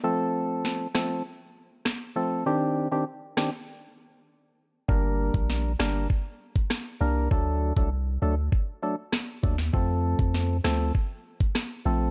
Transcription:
<<
  \new Staff \with { instrumentName = "Synth stab" } { \time 4/4 \key f \mixolydian \tempo 4 = 99 <f a c' a'>4. <f a c' a'>8 r4. <f a c' a'>8 | <ees c' d' g'>8. <ees c' d' g'>16 r8 <ees c' d' g'>16 r2 r16 | <g bes d' bes'>4. <g bes d' bes'>8 r4. <g bes d' bes'>8 | <fis a d' a'>8. <fis a d' a'>16 r8 <fis a d' a'>16 r8. <fis a d' a'>16 r8. <fis a d' a'>16 r16 |
<f a c' a'>4. <f a c' a'>8 r4. <f a c' a'>8 | }
  \new Staff \with { instrumentName = "Sub bass" } { \clef bass \time 4/4 \key f \mixolydian r1 | r1 | g,,8. bes,,8. g,,8 r4. c,8 | d,8. c,8. d,8 r4. ees,8 |
f,8. f,8. d,8 r4. bes,,8 | }
  \new DrumStaff \with { instrumentName = "Drums" } \drummode { \time 4/4 r4 sn8 <ss sn>8 r4 <ss sn>4 | r4 r8 <ss sn>8 r4 r4 | bd8. bd16 sn8 <ss sn>8 bd8. bd16 <ss sn>4 | bd8. bd16 r4 bd4 <ss sn>8 bd16 sn16 |
bd8. bd16 sn8 <ss sn>8 bd8. bd16 <ss sn>4 | }
>>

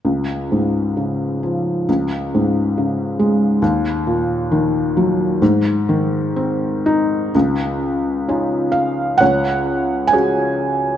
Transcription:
<<
  \new Staff \with { instrumentName = "Felt piano" } { \time 4/4 \key des \major \tempo 4 = 66 << { r1 | r1 | r4. f''8 ges''4 aes''4 | } \\ { r1 | r1 | r2 des''2 | } >> }
  \new Staff \with { instrumentName = "Felt piano" } { \clef bass \time 4/4 \key des \major des,8 aes,8 des8 f8 des,8 aes,8 des8 aes8 | ees,8 bes,8 ees8 ges8 aes,8 ees8 c'8 ees'8 | des,4 <des' ees' f'>4 des,4 <des' ges' aes'>4 | }
>>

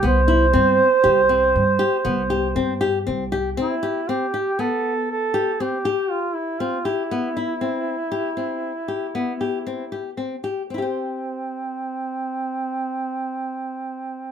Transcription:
<<
  \new Staff \with { instrumentName = "Duduk" } { \time 7/4 \key c \major \tempo 4 = 118 c''1. r4 | e'4 g'4 a'4 a'4 g'4 f'8 e'8 f'8 e'8~ | e'1. r4 | c'1.~ c'4 | }
  \new Staff \with { instrumentName = "Nylon-string guitar" } { \time 7/4 \key c \major b8 e'8 c'4 g'8 c'4 g'8 b8 g'8 c'8 g'8 c'8 g'8 | c'8 g'8 c'8 g'8 b4 r8 g'8 c'8 g'4 r8 c'8 g'8 | b8 e'8 c'4 g'8 c'4 g'8 b8 g'8 c'8 g'8 c'8 g'8 | <c' e' g' c''>1.~ <c' e' g' c''>4 | }
  \new Staff \with { instrumentName = "Upright bass" } { \clef bass \time 7/4 \key c \major c,4 g,8 r8 c,4 g,8 r8 c,4 g,4 c,4 | r1. r4 | r1. r4 | r1. r4 | }
>>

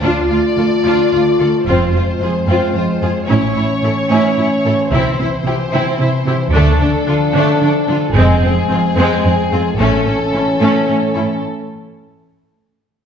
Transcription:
<<
  \new Staff \with { instrumentName = "Violin section" } { \time 3/4 \key a \minor \tempo 4 = 111 d''2. | c''2. | cis''2. | c''2. |
a'2. | aes'2. | a'2. | r2. | }
  \new Staff \with { instrumentName = "Viola section" } { \time 3/4 \key a \minor f'8 f'8 f'8 f'8 f'8 f'8 | f'8 f'8 f'8 f'8 f'8 f'8 | e'8 e'8 e'8 e'8 e'8 e'8 | e'8 e'8 e'8 e'8 e'8 e'8 |
d'8 d'8 d'8 d'8 d'8 d'8 | c'8 c'8 c'8 c'8 c'8 c'8 | cis'8 cis'8 cis'8 cis'8 cis'8 cis'8 | r2. | }
  \new Staff \with { instrumentName = "Violin section" } { \time 3/4 \key a \minor d'8 f'8 a'8 d'8 f'8 a'8 | c'8 f'8 aes'8 c'8 f'8 aes'8 | cis'8 e'8 a'8 cis'8 e'8 a'8 | c'8 e'8 g'8 c'8 e'8 g'8 |
a8 d'8 f'8 a8 d'8 f'8 | aes8 c'8 f'8 aes8 c'8 f'8 | a8 cis'8 e'8 a8 cis'8 e'8 | r2. | }
  \new Staff \with { instrumentName = "French horn section" } { \time 3/4 \key a \minor << { f'2. | c'2. | cis'2. | c'2. |
d'2. | c'2. | cis'2. | r2. | } \\ { a2. | aes2. | e2.~ | e2. |
f2. | aes2. | e2. | r2. | } >> }
  \new Staff \with { instrumentName = "Cello section" } { \clef bass \time 3/4 \key a \minor d,8 d,8 d,8 d,8 d,8 d,8 | f,8 f,8 f,8 f,8 f,8 f,8 | a,8 a,8 a,8 a,8 a,8 a,8 | c8 c8 c8 c8 c8 c8 |
d8 d8 d8 d8 d8 d8 | f,8 f,8 f,8 f,8 f,8 f,8 | a,8 a,8 a,8 a,8 a,8 a,8 | r2. | }
  \new Staff \with { instrumentName = "Double bass section" } { \clef bass \time 3/4 \key a \minor d,8 r2 r8 | f,,8 r2 r8 | a,,8 r2 r8 | c,8 r2 r8 |
d,8 r2 r8 | f,,8 r2 r8 | a,,8 r2 r8 | r2. | }
>>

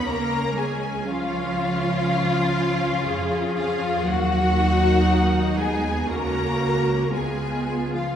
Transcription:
<<
  \new Staff \with { instrumentName = "Violin section" } { \time 4/4 \key cis \mixolydian \tempo 4 = 59 ais''8 gis''8 eis''2~ eis''8 eis''8 | fis''4. gis''8 ais''4 gis''8. eis''16 | }
  \new Staff \with { instrumentName = "Violin section" } { \time 4/4 \key cis \mixolydian ais'8 gis'8 eis'2~ eis'8 eis'8 | fis'4. gis'8 ais'4 gis'8. eis'16 | }
  \new Staff \with { instrumentName = "Viola section" } { \time 4/4 \key cis \mixolydian << { cis'4 eis'4 eis'4 gis'8 gis'8 | fis'8 dis'4. fis'4 eis'4 | } \\ { cis'4 cis'2. | ais4 ais8 b8 cis'8 cis'8 b4 | } >> }
  \new Staff \with { instrumentName = "Cello section" } { \clef bass \time 4/4 \key cis \mixolydian ais8 gis8 eis2~ eis8 eis8 | fis4. gis8 ais4 gis8. eis16 | }
  \new Staff \with { instrumentName = "Double bass section" } { \clef bass \time 4/4 \key cis \mixolydian cis,2. eis,4 | dis,2 cis,4 cis,4 | }
>>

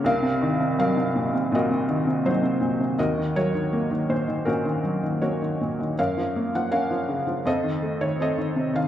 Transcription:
<<
  \new Staff \with { instrumentName = "Felt piano" } { \time 4/4 \key ees \dorian \tempo 4 = 81 << { f''4 f''4 ees''4 c''4 | ees''8 des''4 c''8 bes'4 des''4 | f''8. ges''16 f''4 ees''8. des''16 ees''8. f''16 | } \\ { bes'4 bes'4 <ges' bes'>4 <ees' ges'>4 | <ges' bes'>8 <ges' bes'>4. <des' ges'>4 <ges' bes'>4 | <bes' des''>4 <bes' des''>4 <a' c''>4 <a' c''>4 | } >> }
  \new Staff \with { instrumentName = "Felt piano" } { \clef bass \time 4/4 \key ees \dorian c,16 c16 ees16 c16 ges16 c16 bes,16 c16 bes,16 c16 ees16 c16 ges16 c16 bes,16 c16 | ees,16 ees16 ges16 ees16 bes16 ees16 bes,16 ees16 bes,16 ees16 ges16 ees16 bes16 ees16 bes,16 ees16 | ges,16 f16 bes16 f16 des'16 f16 des16 f16 f,16 ees16 a16 ees16 c'16 ees16 c16 ees16 | }
>>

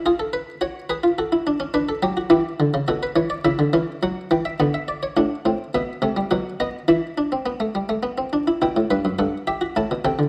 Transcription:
<<
  \new Staff \with { instrumentName = "Harpsichord" } { \time 3/4 \key b \minor \tempo 4 = 105 << { gis'16 a'16 b'8 cis''8 b'8 a'4 | b'16 a'16 g'16 fis'16 g'4 a'16 b'16 cis''16 d''16 | e''4 fis''8 g''16 e''16 fis''16 e''16 d''16 cis''16 | \key e \minor fis''4 e''4 fis''8 dis''8 |
e''2~ e''8 r8 | g''4 fis''8 e''8 a''8 g''8 | } \\ { eis'4 fis'8 gis'16 eis'16 fis'16 e'16 d'16 cis'16 | d'4 e'4 fis'4 | e'8 cis'4. b4 | d'8 c'8 b8 a16 g16 fis8 b8 |
e'8 d'16 c'16 b16 a16 g16 a16 b16 c'16 d'16 e'16 | e'8 b'8 a'8 g'16 fis'16 e'8 a'8 | } >> }
  \new Staff \with { instrumentName = "Harpsichord" } { \clef bass \time 3/4 \key b \minor r2. | r8 fis8 e8 d16 cis16 b,8 e8 | cis16 d16 e8 fis8 e8 d4 | \key e \minor a,8 a,8 b,8 c8 b,4 |
e2~ e8 r8 | b,16 a,16 g,16 fis,16 g,4 a,16 b,16 c16 d16 | }
>>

